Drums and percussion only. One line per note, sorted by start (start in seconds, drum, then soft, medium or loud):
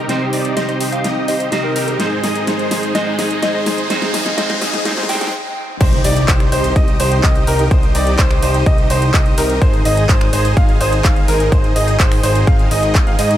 0.09 snare medium
0.09 closed hi-hat medium
0.33 open hi-hat loud
0.45 closed hi-hat soft
0.57 snare medium
0.57 closed hi-hat medium
0.69 closed hi-hat soft
0.81 open hi-hat loud
0.92 closed hi-hat medium
1.04 snare medium
1.04 closed hi-hat medium
1.28 open hi-hat loud
1.40 closed hi-hat medium
1.52 snare medium
1.52 closed hi-hat medium
1.76 open hi-hat loud
1.88 closed hi-hat medium
2.00 snare medium
2.00 closed hi-hat medium
2.24 snare medium
2.24 open hi-hat loud
2.35 closed hi-hat soft
2.47 snare medium
2.47 closed hi-hat medium
2.59 closed hi-hat soft
2.71 snare medium
2.71 open hi-hat loud
2.83 closed hi-hat medium
2.95 snare medium
2.95 closed hi-hat medium
3.19 snare medium
3.19 open hi-hat loud
3.31 closed hi-hat medium
3.43 snare medium
3.43 closed hi-hat medium
3.66 snare medium
3.66 open hi-hat loud
3.78 closed hi-hat medium
3.90 snare medium
3.90 closed hi-hat medium
4.02 snare medium
4.02 closed hi-hat soft
4.14 snare medium
4.14 open hi-hat loud
4.26 snare medium
4.26 closed hi-hat soft
4.38 snare loud
4.38 closed hi-hat medium
4.50 snare medium
4.50 closed hi-hat soft
4.62 snare loud
4.62 open hi-hat loud
4.73 snare medium
4.73 closed hi-hat medium
4.85 snare loud
4.85 closed hi-hat medium
4.91 snare medium
4.97 snare medium
5.03 snare medium
5.09 snare loud
5.09 open hi-hat loud
5.15 snare medium
5.21 snare medium
5.21 closed hi-hat soft
5.27 snare medium
5.81 kick loud
5.81 closed hi-hat medium
5.81 crash loud
5.93 closed hi-hat soft
6.04 open hi-hat loud
6.16 closed hi-hat medium
6.28 finger snap medium
6.28 kick loud
6.28 clap loud
6.28 closed hi-hat medium
6.40 finger snap medium
6.40 closed hi-hat soft
6.52 open hi-hat loud
6.64 closed hi-hat medium
6.76 kick loud
6.76 closed hi-hat medium
6.88 closed hi-hat soft
7.00 open hi-hat loud
7.12 closed hi-hat medium
7.23 kick loud
7.23 clap loud
7.23 closed hi-hat medium
7.35 closed hi-hat soft
7.47 open hi-hat loud
7.59 closed hi-hat medium
7.71 kick loud
7.71 closed hi-hat medium
7.83 closed hi-hat soft
7.95 open hi-hat loud
8.07 closed hi-hat medium
8.19 finger snap medium
8.19 kick loud
8.19 clap loud
8.19 closed hi-hat medium
8.31 finger snap medium
8.31 closed hi-hat soft
8.42 open hi-hat loud
8.54 closed hi-hat medium
8.66 kick loud
8.66 closed hi-hat medium
8.78 closed hi-hat soft
8.90 open hi-hat loud
9.02 closed hi-hat medium
9.14 kick loud
9.14 clap loud
9.14 closed hi-hat medium
9.26 closed hi-hat soft
9.38 open hi-hat loud
9.50 closed hi-hat medium
9.62 kick loud
9.62 closed hi-hat medium
9.73 closed hi-hat soft
9.85 open hi-hat loud
9.97 closed hi-hat medium
10.09 finger snap medium
10.09 kick loud
10.09 clap loud
10.09 closed hi-hat medium
10.21 finger snap medium
10.21 closed hi-hat soft
10.33 open hi-hat loud
10.45 closed hi-hat medium
10.57 kick loud
10.57 closed hi-hat medium
10.69 closed hi-hat soft
10.81 open hi-hat loud
10.93 closed hi-hat medium
11.04 kick loud
11.04 clap loud
11.04 closed hi-hat medium
11.16 closed hi-hat soft
11.28 open hi-hat loud
11.40 closed hi-hat soft
11.52 kick loud
11.52 closed hi-hat medium
11.64 closed hi-hat soft
11.76 open hi-hat loud
11.88 closed hi-hat medium
12.00 finger snap medium
12.00 kick loud
12.00 clap loud
12.00 closed hi-hat soft
12.12 finger snap medium
12.12 open hi-hat medium
12.23 open hi-hat loud
12.35 closed hi-hat soft
12.47 kick loud
12.47 closed hi-hat soft
12.59 closed hi-hat soft
12.71 open hi-hat loud
12.83 closed hi-hat medium
12.95 kick loud
12.95 clap loud
12.95 closed hi-hat medium
13.07 closed hi-hat soft
13.19 open hi-hat loud
13.31 closed hi-hat medium